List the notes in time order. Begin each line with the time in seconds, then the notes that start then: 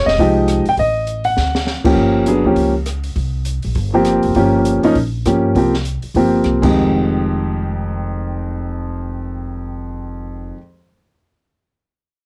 0.06 E1 D#5, snare
0.18 C2 F3 G#3 D#4 G4, kick, open hi-hat
0.48 cross-stick, closed hi-hat
0.66 G5, muted upright bass stroke, open hi-hat
0.77 A1 D#5, kick, open hi-hat
1.07 closed hi-hat
1.24 F#5, open hi-hat
1.37 D2, snare
1.55 snare
1.67 snare
1.84 F3 A#3 C#4 G4, muted upright bass stroke, kick, crash
1.97 G1, kick
2.26 F#3 B3 D4 G#4, closed hi-hat
2.44 D2 F3 A#3 C#4 G4
2.56 C#2, kick, open hi-hat
2.86 cross-stick, closed hi-hat
3.04 open hi-hat
3.16 C2, kick, open hi-hat
3.45 closed hi-hat
3.62 A#1, open hi-hat
3.75 G1, kick, open hi-hat
3.93 F3 A#3 C4 G4
4.05 cross-stick, closed hi-hat
4.23 F1, open hi-hat
4.35 G1 F3 A#3 C#4 G4, kick, open hi-hat
4.65 closed hi-hat
4.83 F3 A#3 C#4 D#4, muted upright bass stroke, open hi-hat
4.95 A#1, kick, open hi-hat
5.25 G2 F3 A#3 C#4 G4, cross-stick, closed hi-hat
5.55 C2 F3 A#3 C4 G4, kick, open hi-hat
5.74 snare
5.85 closed hi-hat
6.02 muted upright bass stroke, open hi-hat
6.14 G1 F3 A#3 C4 G4, kick, open hi-hat
6.44 C2, cross-stick, closed hi-hat
6.62 F1 F2 D#3 G#3 G4, kick, crash